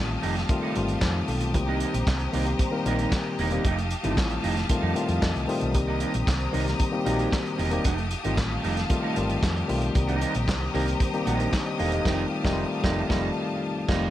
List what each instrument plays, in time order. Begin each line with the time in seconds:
Already playing: fingered electric bass A1, tine electric piano D#3 G3 A3 C4 F4, string section G4 F5 A5 D#6
0.10 muted clean electric guitar stroke
0.22 fingered electric bass F1, clean electric guitar A3 D#4 G4, open hi-hat
0.36 muted clean electric guitar stroke, snare, closed hi-hat
0.49 tine electric piano D#3 G3 A3 C4 F4, muted clean electric guitar stroke, kick, closed hi-hat
0.62 clean electric guitar A3 D#4 A4
0.75 fingered electric bass G1, tine electric piano D#3 G3 A3 C4 F4, muted clean electric guitar stroke, closed hi-hat
0.88 muted clean electric guitar stroke, closed hi-hat
1.01 fingered electric bass F2, tine electric piano D#4 C5, muted clean electric guitar stroke, kick, snare, clap
1.15 muted clean electric guitar stroke
1.28 fingered electric bass B1, tine electric piano C4 A4, open hi-hat
1.41 tine electric piano A3 F4, muted clean electric guitar stroke, closed hi-hat
1.53 fingered electric bass C2, tine electric piano D#3 G3 A#3 C4 G4, string section C5 A#5, muted clean electric guitar stroke, kick, closed hi-hat
1.67 clean electric guitar A#3 D#4 G4
1.80 clean electric guitar A#3 D#4 G4, closed hi-hat
1.93 fingered electric bass A#1, muted clean electric guitar stroke, closed hi-hat
2.07 fingered electric bass C2, kick, snare, clap
2.20 muted clean electric guitar stroke, closed hi-hat
2.32 fingered electric bass C2, tine electric piano D#3 G3 A#3 C4 G4, clean electric guitar A#3 D#4 G4, open hi-hat
2.47 muted clean electric guitar stroke, closed hi-hat
2.59 muted clean electric guitar stroke, kick, closed hi-hat
2.71 tine electric piano D#3 G3 A#3 C4 A#4, muted clean electric guitar stroke
2.85 fingered electric bass A#1, tine electric piano D#3 G3 A#3 C4 G4, clean electric guitar A#3 D#4 G4, closed hi-hat
2.99 clean electric guitar A#3 D#4 G4, closed hi-hat
3.12 kick, snare, clap
3.26 muted clean electric guitar stroke
3.39 fingered electric bass E1, clean electric guitar A#3 D#4 G4, open hi-hat
3.51 tine electric piano D#3 G3 A#3 C4 G4, clean electric guitar A#3 D#4 G4, closed hi-hat
3.64 fingered electric bass F1, clean electric guitar A3 D#4 G4, string section F5 A5 D#6, kick, closed hi-hat
3.78 muted clean electric guitar stroke, closed hi-hat
3.91 muted clean electric guitar stroke, closed hi-hat
4.03 fingered electric bass G1, tine electric piano D#3 G3 A3 C4 E4, clean electric guitar A3 D#4 G4, closed hi-hat
4.11 tine electric piano F4
4.17 fingered electric bass A1, kick, snare, clap
4.30 muted clean electric guitar stroke, closed hi-hat
4.43 fingered electric bass F1, clean electric guitar A3 D#4 G4, open hi-hat
4.56 muted clean electric guitar stroke, snare, closed hi-hat
4.69 tine electric piano D#3 G3 A3 C4 F4, muted clean electric guitar stroke, kick, closed hi-hat
4.82 fingered electric bass F2, clean electric guitar A3 D#4 A4
4.95 tine electric piano D#3 G3 A3 C4 F4 F5, muted clean electric guitar stroke, closed hi-hat
5.08 fingered electric bass F2, muted clean electric guitar stroke, closed hi-hat
5.22 fingered electric bass F2, tine electric piano D#5, muted clean electric guitar stroke, kick, snare, clap
5.35 fingered electric bass C2, muted clean electric guitar stroke, closed hi-hat
5.47 tine electric piano D#3 G3 A3 C4 F4 C5, open hi-hat
5.61 fingered electric bass B1, muted clean electric guitar stroke, closed hi-hat
5.73 fingered electric bass C2, tine electric piano D#3 G3 A#3 C4 G4, string section G4 C5 A#5, muted clean electric guitar stroke, kick, closed hi-hat
5.87 clean electric guitar A#3 D#4 G4
6.00 clean electric guitar A#3 D#4 G4, closed hi-hat
6.14 fingered electric bass A#1, muted clean electric guitar stroke, closed hi-hat
6.27 fingered electric bass C2, kick, snare, clap
6.40 muted clean electric guitar stroke, closed hi-hat
6.52 fingered electric bass C2, tine electric piano D#3 G3 A#3 C4 G4, clean electric guitar A#3 D#4 G4, open hi-hat
6.66 muted clean electric guitar stroke, snare, closed hi-hat
6.79 muted clean electric guitar stroke, kick, closed hi-hat
6.92 tine electric piano D#3 G3 A#3 C4 G4, muted clean electric guitar stroke
7.05 fingered electric bass A#1, tine electric piano D#3 G3 A#3 C4 F#4, clean electric guitar A#3 D#4 G4, closed hi-hat
7.13 tine electric piano G4
7.19 clean electric guitar A#3 D#4 G4, closed hi-hat
7.32 muted clean electric guitar stroke, kick, snare, clap
7.45 muted clean electric guitar stroke, closed hi-hat
7.58 fingered electric bass E1, clean electric guitar A#3 D#4 G4, open hi-hat
7.71 tine electric piano D#3 G3 A#3 C4 G4, clean electric guitar A#3 D#4 G4, closed hi-hat
7.84 fingered electric bass F1, clean electric guitar A3 D#4 G4, string section F5 A5, kick, closed hi-hat
7.98 muted clean electric guitar stroke, closed hi-hat
8.11 muted clean electric guitar stroke, closed hi-hat
8.24 fingered electric bass G1, tine electric piano D#3 G3 A3 C4 F4, clean electric guitar A3 D#4 G4, closed hi-hat
8.37 fingered electric bass A1, kick, snare, clap
8.50 muted clean electric guitar stroke
8.63 fingered electric bass F1, clean electric guitar A3 D#4 G4, open hi-hat
8.76 muted clean electric guitar stroke, snare, closed hi-hat
8.89 tine electric piano D#3 G3 A3 C4 F4, muted clean electric guitar stroke, kick, closed hi-hat
9.03 clean electric guitar A3 D#4 A4
9.16 fingered electric bass G1, tine electric piano D#3 G3 A3 C4 F4, muted clean electric guitar stroke, closed hi-hat
9.29 muted clean electric guitar stroke, closed hi-hat
9.43 fingered electric bass F2, muted clean electric guitar stroke, kick, snare, clap
9.55 muted clean electric guitar stroke, closed hi-hat
9.68 fingered electric bass B1, tine electric piano D#3 G3 A3 C4 F4, open hi-hat
9.82 muted clean electric guitar stroke, closed hi-hat
9.95 fingered electric bass C2, tine electric piano D#3 G3 A#3 C4 G4, string section C5 A#5 D#6, muted clean electric guitar stroke, kick, closed hi-hat
10.08 clean electric guitar A#3 D#4 G4, closed hi-hat
10.21 clean electric guitar A#3 D#4 G4, closed hi-hat
10.34 fingered electric bass A#1, muted clean electric guitar stroke, closed hi-hat
10.48 fingered electric bass C2, kick, snare, clap
10.61 muted clean electric guitar stroke
10.74 fingered electric bass C2, tine electric piano D#3 G3 A#3 C4 G4, clean electric guitar A#3 D#4 G4, open hi-hat
10.87 muted clean electric guitar stroke, closed hi-hat
11.00 muted clean electric guitar stroke, kick, closed hi-hat
11.13 tine electric piano D#3 G3 A#3 C4 G4, muted clean electric guitar stroke, closed hi-hat
11.26 fingered electric bass A#1, clean electric guitar A#3 D#4 G4, closed hi-hat
11.39 clean electric guitar A#3 D#4 G4, tine electric piano D4 A#4, closed hi-hat
11.52 tine electric piano D#4 C5, muted clean electric guitar stroke, kick, snare, clap
11.66 tine electric piano G4 D#5, muted clean electric guitar stroke
11.78 fingered electric bass E1, clean electric guitar A#3 D#4 G4, tine electric piano A4 F5, open hi-hat
11.92 clean electric guitar A#3 D#4 G4, tine electric piano G4 D#5, closed hi-hat
12.05 fingered electric bass F1, tine electric piano D#3 G3 A3 C4 D#4, clean electric guitar A3 D#4 G4, string section F5 A5, kick, snare, crash
12.13 tine electric piano F4
12.44 fingered electric bass F1, tine electric piano D#3 G3 A3 C4 D#4, clean electric guitar A3 D#4 G4, kick, snare
12.52 tine electric piano F4
12.83 fingered electric bass F1, tine electric piano D#3 G3 A3 C4 F4, clean electric guitar A3 D#4 G4, kick, snare
13.09 fingered electric bass F1, tine electric piano D#3 G3 A3 C4 F4, clean electric guitar A3 D#4 A4, kick, snare
13.88 fingered electric bass F1, tine electric piano D#3 G3 A3 C4 F4 F5, clean electric guitar A3 D#4 A4, kick, snare, crash